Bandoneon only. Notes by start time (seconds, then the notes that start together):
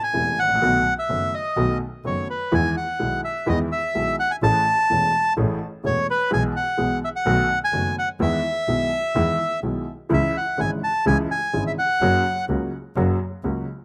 0.03 G#5
0.39 F#5
0.99 E5
1.34 D#5
2.07 C#5
2.30 B4
2.54 G#5
2.77 F#5
3.24 E5
3.49 D#5
3.72 E5
4.20 F#5
4.31 G#5
4.43 A5
5.86 C#5
6.10 B4
6.33 G#5
6.56 F#5
7.05 E5
7.16 F#5
7.64 G#5
7.99 F#5
8.22 E5
10.14 E5
10.37 F#5
10.60 G#5
10.84 A5
11.07 G#5
11.31 G#5
11.67 E5
11.79 F#5